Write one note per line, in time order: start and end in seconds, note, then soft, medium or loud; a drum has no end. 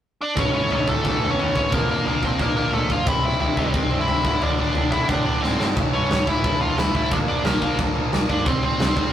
0.21 0.36 D4 medium
0.21 0.38 D5 medium
0.35 0.52 A1 medium
0.35 0.53 A2 medium
0.35 0.53 E3 medium
0.35 0.52 A3 medium
0.35 0.53 C#4 medium
0.35 kick loud
0.35 floor tom medium
0.40 0.55 C#5 medium
0.54 0.69 G2 medium
0.54 0.68 A2 medium
0.54 0.69 E3 medium
0.54 0.70 A3 medium
0.54 0.70 C#4 medium
0.54 0.71 C#5 medium
0.54 floor tom medium
0.69 0.86 A1 medium
0.69 0.87 A2 medium
0.69 0.87 E3 medium
0.69 0.86 A3 medium
0.69 0.87 C#4 medium
0.69 0.89 C#5 medium
0.69 floor tom medium
0.87 1.03 A1 medium
0.87 1.03 A2 medium
0.87 1.03 E3 medium
0.87 1.04 A3 medium
0.87 1.27 A3 medium
0.87 1.31 A4 medium
0.87 kick medium
0.87 floor tom medium
1.04 1.20 A1 medium
1.04 1.21 A2 medium
1.04 1.20 E3 medium
1.04 1.20 A3 medium
1.04 kick medium
1.04 floor tom medium
1.21 1.36 E2 medium
1.21 1.36 A2 medium
1.21 1.37 E3 medium
1.21 1.37 A3 medium
1.21 floor tom medium
1.30 1.53 C#4 medium
1.30 1.56 C#5 medium
1.37 1.53 E2 medium
1.37 1.54 A2 medium
1.37 1.54 E3 medium
1.37 1.53 A3 medium
1.37 floor tom medium
1.54 1.70 A1 medium
1.54 1.71 A2 medium
1.54 1.71 E3 medium
1.54 1.70 A3 medium
1.54 1.71 C#4 medium
1.54 1.72 C#5 medium
1.54 kick medium
1.54 floor tom medium
1.72 1.87 A#1 medium
1.72 1.89 A#2 medium
1.72 1.88 F3 medium
1.72 1.87 A#3 medium
1.72 1.88 A#3 medium
1.72 1.90 A#4 medium
1.72 kick loud
1.72 floor tom medium
1.88 2.04 F2 medium
1.88 2.05 A#2 medium
1.88 2.06 F3 medium
1.88 2.06 A#3 medium
1.88 2.21 A#3 medium
1.88 2.24 A#4 medium
1.88 floor tom medium
2.05 2.36 A#1 medium
2.05 2.23 A#2 medium
2.05 2.22 F3 medium
2.05 2.21 A#3 medium
2.05 floor tom medium
2.23 2.37 A#2 medium
2.23 2.38 F3 medium
2.23 2.39 A#3 medium
2.23 2.39 C4 medium
2.23 2.41 C5 medium
2.23 kick medium
2.23 floor tom medium
2.39 2.55 A#1 medium
2.39 2.56 A#2 medium
2.39 2.56 F3 medium
2.39 2.55 A#3 loud
2.39 2.55 A#3 medium
2.39 2.55 A#4 medium
2.39 kick medium
2.39 floor tom medium
2.56 2.71 A#1 medium
2.56 2.70 A#2 medium
2.56 2.71 F3 medium
2.56 2.72 A#3 medium
2.56 2.73 A#4 medium
2.56 floor tom medium
2.72 2.88 A#1 medium
2.72 2.89 A#2 medium
2.72 2.89 F3 medium
2.72 2.89 A3 medium
2.72 2.88 A#3 medium
2.72 2.91 A4 medium
2.72 floor tom medium
2.89 3.05 G2 medium
2.89 3.05 A#2 medium
2.89 3.06 F3 medium
2.89 3.05 A#3 medium
2.89 3.06 F4 medium
2.89 3.08 F5 medium
2.89 kick medium
2.89 floor tom medium
3.06 3.22 C2 medium
3.06 3.23 C3 medium
3.06 3.23 G3 medium
3.06 3.22 C4 medium
3.06 3.23 E4 medium
3.06 3.24 E5 loud
3.06 kick loud
3.06 floor tom medium
3.23 3.38 A#2 medium
3.23 3.39 C3 medium
3.23 3.40 G3 medium
3.23 3.40 C4 medium
3.23 3.40 E4 medium
3.23 3.40 E5 loud
3.23 floor tom medium
3.40 3.56 C2 medium
3.40 3.56 C3 medium
3.40 3.56 G3 medium
3.40 3.55 C4 medium
3.40 3.56 E4 medium
3.40 3.58 E5 medium
3.40 floor tom medium
3.56 3.73 C2 medium
3.56 3.71 C3 medium
3.56 3.72 G3 medium
3.56 3.72 C4 medium
3.56 3.97 C4 medium
3.56 4.01 C5 medium
3.56 kick medium
3.56 floor tom medium
3.72 3.90 C2 medium
3.72 3.89 C3 medium
3.72 3.89 G3 medium
3.72 3.88 C4 medium
3.72 kick medium
3.72 floor tom medium
3.90 4.06 G2 medium
3.90 4.06 C3 medium
3.90 4.06 G3 medium
3.90 4.07 C4 medium
3.90 floor tom medium
4.00 4.23 E4 medium
4.00 4.24 E5 medium
4.07 4.23 G2 medium
4.07 4.23 C3 medium
4.07 4.24 G3 medium
4.07 4.24 C4 medium
4.07 floor tom medium
4.24 4.40 D1 medium
4.24 4.41 D2 medium
4.24 4.40 A2 medium
4.24 4.40 D3 medium
4.24 4.41 E4 medium
4.24 4.43 E5 medium
4.24 kick loud
4.24 floor tom medium
4.41 4.57 D1 medium
4.41 4.57 D2 medium
4.41 4.58 A2 medium
4.41 4.58 D3 loud
4.41 4.58 D4 medium
4.41 4.58 D5 medium
4.41 floor tom medium
4.57 4.73 A1 medium
4.57 4.76 D2 medium
4.57 4.75 A2 medium
4.57 4.75 D3 medium
4.57 4.91 D4 medium
4.57 4.91 D5 medium
4.57 floor tom medium
4.74 5.05 D1 medium
4.74 4.91 D2 medium
4.74 4.92 A2 medium
4.74 4.92 D3 medium
4.74 floor tom medium
4.92 5.09 D2 medium
4.92 5.08 A2 medium
4.92 5.08 D3 medium
4.92 5.08 E4 medium
4.92 5.09 E5 medium
4.92 kick medium
4.92 floor tom medium
5.09 5.24 D1 medium
5.09 5.25 D2 medium
5.09 5.25 A2 medium
5.09 5.27 D3 medium
5.09 5.25 D4 medium
5.09 5.24 D5 medium
5.09 kick loud
5.09 floor tom medium
5.26 5.41 D1 medium
5.26 5.43 D2 medium
5.26 5.42 A2 medium
5.26 5.41 D3 medium
5.26 5.42 D4 medium
5.26 5.42 D5 medium
5.26 floor tom medium
5.42 5.58 D1 medium
5.42 5.57 D2 medium
5.42 5.58 A2 medium
5.42 5.58 D3 medium
5.42 5.66 C4 medium
5.42 5.66 C5 medium
5.42 snare soft
5.58 5.75 G1 medium
5.58 5.75 D2 medium
5.58 5.75 A2 medium
5.58 5.76 D3 medium
5.58 snare medium
5.77 5.92 A1 medium
5.77 5.93 A2 medium
5.77 5.92 E3 medium
5.77 5.92 A3 medium
5.77 kick loud
5.77 floor tom medium
5.93 6.09 G2 medium
5.93 6.08 A2 medium
5.93 6.09 E3 medium
5.93 6.09 A3 medium
5.93 6.25 C#4 medium
5.93 6.28 C#5 medium
5.93 floor tom soft
6.09 6.25 A1 medium
6.09 6.27 A2 medium
6.09 6.26 E3 medium
6.09 6.26 A3 medium
6.09 snare medium
6.09 floor tom medium
6.27 6.43 A1 medium
6.27 6.42 A2 medium
6.27 6.43 E3 medium
6.27 6.44 A3 medium
6.27 6.60 E4 medium
6.27 6.60 E5 medium
6.27 kick medium
6.27 floor tom medium
6.43 6.60 A1 medium
6.43 6.61 A2 medium
6.43 6.60 E3 medium
6.43 6.59 A3 medium
6.43 kick loud
6.43 floor tom medium
6.61 6.76 E2 medium
6.61 6.76 A2 medium
6.61 6.76 E3 medium
6.61 6.77 A3 medium
6.61 6.77 F4 medium
6.61 6.77 F5 medium
6.61 floor tom medium
6.77 6.93 E2 medium
6.77 6.94 A2 medium
6.77 6.93 E3 medium
6.77 6.93 A3 medium
6.77 6.94 E4 medium
6.77 6.94 E5 medium
6.77 snare medium
6.77 floor tom medium
6.94 7.10 A1 medium
6.94 7.10 A2 medium
6.94 7.11 E3 medium
6.94 7.10 A3 medium
6.94 7.11 E4 medium
6.94 7.12 E5 medium
6.94 kick medium
6.94 floor tom medium
7.11 7.27 A#1 medium
7.11 7.27 A#2 medium
7.11 7.26 F3 medium
7.11 7.26 A#3 loud
7.11 7.17 D4 medium
7.11 7.16 D5 medium
7.11 kick loud
7.11 floor tom medium
7.28 7.43 F2 medium
7.28 7.43 A#2 medium
7.28 7.44 F3 medium
7.28 7.45 A#3 medium
7.28 7.44 D4 medium
7.28 7.46 D5 medium
7.28 floor tom medium
7.45 7.76 A#1 medium
7.45 7.61 A#2 medium
7.45 7.60 F3 medium
7.45 7.77 A#3 medium
7.45 7.59 A#3 medium
7.45 7.76 A#4 medium
7.45 snare loud
7.45 floor tom medium
7.60 7.77 A#2 medium
7.60 7.77 F3 medium
7.60 7.78 A#3 medium
7.60 kick medium
7.60 floor tom medium
7.78 7.94 A#1 medium
7.78 7.94 A#2 medium
7.78 7.94 F3 medium
7.78 7.93 A#3 loud
7.78 kick loud
7.78 floor tom medium
7.94 8.11 A#1 medium
7.94 8.11 A#2 medium
7.94 8.12 F3 medium
7.94 8.12 A#3 medium
7.94 floor tom medium
8.12 8.28 A#1 medium
8.12 8.29 A#2 medium
8.12 8.28 F3 medium
8.12 8.28 A#3 medium
8.12 snare medium
8.12 floor tom medium
8.29 8.45 G2 medium
8.29 8.45 A#2 medium
8.29 8.45 F3 medium
8.29 8.45 A#3 medium
8.29 8.46 D4 medium
8.29 8.45 D5 medium
8.29 kick medium
8.29 floor tom medium
8.46 8.62 C2 medium
8.46 8.63 C3 medium
8.46 8.62 G3 medium
8.46 8.61 C4 loud
8.46 8.63 C4 medium
8.46 8.63 C5 loud
8.46 kick loud
8.46 floor tom medium
8.62 8.78 A#2 medium
8.62 8.78 C3 medium
8.62 8.79 G3 medium
8.62 8.80 C4 medium
8.62 8.96 C4 medium
8.62 8.96 C5 medium
8.62 floor tom medium
8.79 8.95 C2 medium
8.79 8.96 C3 medium
8.79 8.96 G3 medium
8.79 8.95 C4 medium
8.79 snare loud
8.79 floor tom medium
8.96 9.12 C2 medium
8.96 9.13 C3 medium
8.96 9.13 G3 medium
8.96 9.13 C4 medium
8.96 9.13 C5 medium
8.96 kick medium
8.96 floor tom medium